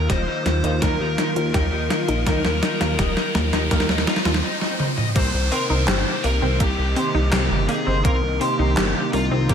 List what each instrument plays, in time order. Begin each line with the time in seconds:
Already playing: analog synth pad D#3 A#3 F4, riser
0.10 analog synth bass D#1, synth arpeggio sound G4, lead electric guitar C5, overdriven electric guitar D#5, kick, snare, closed hi-hat
0.28 overdriven electric guitar D#4
0.46 analog synth bass D#2, synth arpeggio sound A#3, snare, closed hi-hat
0.64 analog synth bass D#2, overdriven electric guitar D#4, synth arpeggio sound D#4, closed hi-hat
0.82 analog synth bass D#2, synth arpeggio sound A#3, overdriven electric guitar A#4, lead electric guitar A#4, kick, snare, closed hi-hat
1.00 analog synth bass D#2, overdriven electric guitar D#4
1.18 synth arpeggio sound D#4, overdriven electric guitar D#4, snare, closed hi-hat
1.36 analog synth bass D#2, synth arpeggio sound F4, closed hi-hat
1.54 analog synth bass D#2, overdriven electric guitar D#4, synth arpeggio sound G4, kick, snare, closed hi-hat
1.72 analog synth bass D#2, overdriven electric guitar D#4
1.90 synth arpeggio sound A#3, overdriven electric guitar D#4, snare, closed hi-hat
2.08 analog synth bass A#1, synth arpeggio sound D#4, overdriven electric guitar D#5, closed hi-hat
2.26 analog synth bass D#2, synth arpeggio sound A#3, overdriven electric guitar D#4, kick, snare, closed hi-hat
2.45 analog synth bass D#2, snare
2.63 synth arpeggio sound D#4, overdriven electric guitar D#4, snare, closed hi-hat
2.81 analog synth bass D#2, synth arpeggio sound F4, overdriven electric guitar A#4, snare, closed hi-hat
2.99 analog synth bass D#1, synth arpeggio sound G4, overdriven electric guitar D#5, kick, snare, closed hi-hat
3.17 overdriven electric guitar D#4, snare
3.35 analog synth bass D#2, synth arpeggio sound A#3, snare, closed hi-hat
3.53 analog synth bass D#2, synth arpeggio sound D#4, overdriven electric guitar D#4, snare, closed hi-hat
3.71 analog synth bass D#2, synth arpeggio sound A#3, overdriven electric guitar A#4, kick, snare, closed hi-hat, swell
3.80 snare
3.89 analog synth bass D#2, overdriven electric guitar D#4, snare
3.98 snare
4.07 synth arpeggio sound D#4, overdriven electric guitar D#4, lead electric guitar F4, snare, closed hi-hat
4.16 snare
4.25 analog synth bass D#2, synth arpeggio sound F4, snare, closed hi-hat
4.34 snare
4.44 overdriven electric guitar D#4
4.61 overdriven electric guitar D#4, snare
4.80 overdriven electric guitar D#4, mid tom
4.98 overdriven electric guitar D#5, mid tom
5.16 analog synth bass C2, analog synth pad C3 D#3 A#3 D#4, synth arpeggio sound A#3, overdriven electric guitar C4, lead electric guitar C5, kick, closed hi-hat, crash, downlifter
5.34 analog synth bass C2
5.52 synth arpeggio sound C4, lead electric guitar A#4, overdriven electric guitar C5, open hi-hat
5.70 analog synth bass C2, overdriven electric guitar C4, synth arpeggio sound D#4
5.88 analog synth bass G1, overdriven electric guitar C4, synth arpeggio sound G4, lead electric guitar C5, snare, clap, closed hi-hat
6.06 overdriven electric guitar G4
6.24 analog synth bass C2, synth arpeggio sound A#3, lead electric guitar A#4, open hi-hat
6.42 analog synth bass C2, synth arpeggio sound C4, overdriven electric guitar C4
6.60 analog synth bass C2, synth arpeggio sound A#3, lead electric guitar G4, overdriven electric guitar G4, kick, closed hi-hat
6.78 analog synth bass C2, overdriven electric guitar G4
6.96 synth arpeggio sound C4, overdriven electric guitar C5, open hi-hat
7.14 analog synth bass C2, synth arpeggio sound D#4
7.32 analog synth bass C2, overdriven electric guitar C4, lead electric guitar G4, synth arpeggio sound G4, snare, clap, closed hi-hat
7.51 analog synth bass G1, overdriven electric guitar G4
7.68 synth arpeggio sound A#3, overdriven electric guitar G4, lead electric guitar G#4, open hi-hat
7.87 analog synth bass G1, synth arpeggio sound C4, overdriven electric guitar C5
8.05 analog synth bass C2, synth arpeggio sound A#3, overdriven electric guitar C4, lead electric guitar A#4, kick, closed hi-hat
8.23 analog synth bass C2
8.41 synth arpeggio sound C4, lead electric guitar G4, overdriven electric guitar C5, open hi-hat
8.59 analog synth bass C2, overdriven electric guitar C4, synth arpeggio sound D#4
8.77 analog synth bass G1, overdriven electric guitar C4, synth arpeggio sound G4, snare, clap, closed hi-hat
8.95 overdriven electric guitar G4
9.13 analog synth bass C2, synth arpeggio sound A#3, lead electric guitar F4, open hi-hat
9.31 analog synth bass C2, synth arpeggio sound C4, overdriven electric guitar C4
9.49 analog synth bass C2, synth arpeggio sound A#3, lead electric guitar G4, overdriven electric guitar G4, kick, closed hi-hat